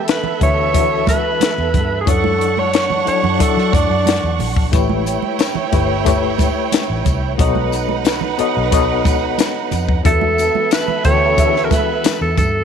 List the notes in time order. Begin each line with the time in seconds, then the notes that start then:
Already playing: E3 B3 D4 A4 E5 F#5
0.08 B4, snare, closed hi-hat
0.24 high conga, low conga
0.40 D2 E3 D4 F#4 A4 C#5 E5, kick, closed hi-hat, muted conga
0.73 E3 D4 F#4 A4 E5, kick, closed hi-hat, muted conga
1.07 B4, kick, closed hi-hat, muted conga, high conga
1.41 snare, closed hi-hat, muted conga, high conga
1.58 E2
1.74 G2, kick, closed hi-hat, muted conga, low conga
2.01 G#4
2.06 F#2 F#3 D4 E4 A4 C#5 F#5 C#6, kick, closed hi-hat
2.24 high conga
2.41 closed hi-hat, muted conga
2.57 C#5, high conga
2.73 snare, closed hi-hat, muted conga
2.90 high conga, low conga
3.05 F#3 D4 E4 A4 C#5, muted fingered electric bass stroke, closed hi-hat, muted conga
3.23 F#2, low conga
3.38 F#3 D4 E4 A4 D5, kick, closed hi-hat, muted conga
3.57 F#3, snare
3.73 F#2 D5, kick, closed hi-hat, high conga
3.90 F#2
4.06 snare, closed hi-hat, high conga
4.23 E2
4.39 A#1, open hi-hat, muted conga, low conga
4.56 kick
4.72 A1 A3 E4 G4 B4 C#5 G5, kick, closed hi-hat, tambourine, muted conga
4.89 high conga
5.06 closed hi-hat, tambourine, muted conga
5.22 high conga
5.39 snare, closed hi-hat, tambourine, muted conga
5.55 high conga, low conga
5.72 G1 A3 E4 G4 B4 C#5, kick, closed hi-hat, tambourine, muted conga
6.05 A3 E4 G4 B4 C#5, kick, closed hi-hat, tambourine
6.38 kick, closed hi-hat, tambourine, muted conga, high conga
6.72 snare, closed hi-hat, tambourine, high conga
6.90 A1
7.05 C2, kick, closed hi-hat, tambourine, muted conga, low conga
7.38 B1 B3 D#4 F#4 A4 B4 C#5 D#5 F#5, kick, closed hi-hat, muted conga
7.55 high conga
7.72 closed hi-hat, tambourine
7.89 high conga
8.04 snare, closed hi-hat, tambourine, muted conga
8.21 high conga, low conga
8.38 B3 F#4 A4 C#5 D#5, muted fingered electric bass stroke, closed hi-hat, muted conga
8.57 B1
8.71 B3 F#4 A4 C#5 D#5, kick, closed hi-hat, tambourine, muted conga
9.04 kick, closed hi-hat, tambourine, high conga
9.38 snare, closed hi-hat, tambourine, muted conga, high conga
9.71 F2, closed hi-hat, tambourine, muted conga, low conga
9.89 kick
10.04 E2 E3 B3 D4 F#4 A4 E5, kick, closed hi-hat, muted conga
10.21 high conga
10.38 closed hi-hat, tambourine, muted conga
10.55 high conga
10.71 B4, snare, closed hi-hat, tambourine
10.88 high conga, low conga
11.04 D2 E3 D4 F#4 A4 C#5 G5, kick, closed hi-hat, tambourine
11.37 E3 D4 F#4 G#4 E5, kick, closed hi-hat, tambourine, muted conga
11.46 A4
11.56 snare
11.64 A#4
11.71 B4, kick, closed hi-hat, tambourine, muted conga, high conga
12.04 snare, closed hi-hat, tambourine, high conga
12.21 E2 A4
12.37 G2 A4, kick, closed hi-hat, tambourine, muted conga, low conga